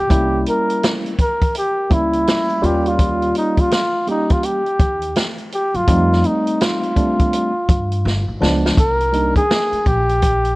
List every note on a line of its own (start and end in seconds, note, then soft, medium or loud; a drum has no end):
0.00 0.43 G4 loud
0.09 0.43 C2 loud
0.09 1.12 G3 medium
0.09 1.13 A#3 medium
0.09 1.13 C#4 medium
0.09 1.13 E4 medium
0.09 kick loud
0.09 closed hi-hat medium
0.46 0.92 A#4 loud
0.46 closed hi-hat medium
0.69 closed hi-hat medium
0.83 snare loud
0.83 closed hi-hat medium
1.06 closed hi-hat soft
1.19 1.53 A#4 medium
1.19 kick medium
1.19 closed hi-hat medium
1.42 kick medium
1.42 closed hi-hat medium
1.55 1.95 G4 medium
1.55 closed hi-hat medium
1.90 2.24 C#2 medium
1.90 2.61 G3 medium
1.90 2.61 A#3 medium
1.90 2.61 C#4 medium
1.90 2.63 E4 medium
1.90 2.67 E4 loud
1.90 kick loud
1.90 closed hi-hat medium
2.13 closed hi-hat medium
2.27 snare loud
2.27 closed hi-hat medium
2.50 closed hi-hat soft
2.62 3.31 D#2 medium
2.62 3.80 G3 medium
2.62 3.80 A#3 medium
2.62 3.80 C#4 medium
2.62 3.80 F4 medium
2.62 2.90 G4 medium
2.62 closed hi-hat medium
2.86 3.36 F4 medium
2.86 closed hi-hat soft
2.99 kick medium
2.99 closed hi-hat medium
3.22 closed hi-hat soft
3.35 3.62 D#4 medium
3.35 closed hi-hat medium
3.57 3.72 F4 medium
3.57 kick medium
3.57 closed hi-hat medium
3.71 4.06 F4 medium
3.71 snare loud
3.71 closed hi-hat medium
4.07 4.61 G3 medium
4.07 4.61 A#3 medium
4.07 4.62 C#4 soft
4.07 4.34 D#4 medium
4.07 4.62 G4 medium
4.07 closed hi-hat medium
4.30 4.46 F4 medium
4.30 kick medium
4.30 closed hi-hat medium
4.43 5.28 G4 medium
4.43 closed hi-hat medium
4.66 closed hi-hat soft
4.79 5.13 D#2 medium
4.79 kick loud
4.79 closed hi-hat medium
5.02 closed hi-hat medium
5.16 snare loud
5.16 closed hi-hat medium
5.38 closed hi-hat soft
5.52 5.77 G4 medium
5.52 closed hi-hat medium
5.74 5.87 F#2 medium
5.74 6.28 F4 loud
5.74 closed hi-hat soft
5.87 6.21 F2 loud
5.87 6.91 G3 medium
5.87 6.91 A3 medium
5.87 6.91 C4 medium
5.87 6.91 D#4 medium
5.87 kick loud
5.87 closed hi-hat medium
6.13 snare soft
6.24 6.64 D#4 medium
6.24 closed hi-hat medium
6.47 closed hi-hat medium
6.61 8.42 F4 medium
6.61 snare loud
6.61 closed hi-hat medium
6.83 closed hi-hat soft
6.96 7.50 G3 medium
6.96 7.50 A3 medium
6.96 7.51 C4 medium
6.96 7.51 D4 medium
6.96 kick medium
6.96 closed hi-hat medium
7.19 kick medium
7.19 closed hi-hat medium
7.33 closed hi-hat medium
7.69 8.02 G2 medium
7.69 kick loud
7.69 closed hi-hat medium
7.92 closed hi-hat medium
8.05 8.26 G1 loud
8.05 snare medium
8.28 8.40 G#1 medium
8.41 8.75 C#2 loud
8.41 8.77 F3 medium
8.41 8.77 G#3 medium
8.41 8.77 B3 medium
8.41 8.77 D4 medium
8.41 snare medium
8.66 snare medium
8.77 9.32 C2 loud
8.77 9.33 A#4 loud
8.77 kick loud
8.77 closed hi-hat medium
9.01 closed hi-hat soft
9.13 9.41 G3 medium
9.13 9.41 A#3 medium
9.13 9.41 D4 medium
9.13 9.41 D#4 medium
9.13 closed hi-hat medium
9.36 9.89 G#4 loud
9.36 kick medium
9.36 closed hi-hat medium
9.51 snare loud
9.72 muted upright bass stroke soft
9.72 closed hi-hat soft
9.86 10.54 A#1 medium
9.86 10.56 G4 loud
9.86 kick medium
9.86 closed hi-hat medium
10.09 closed hi-hat medium
10.22 kick medium
10.22 closed hi-hat medium
10.45 closed hi-hat soft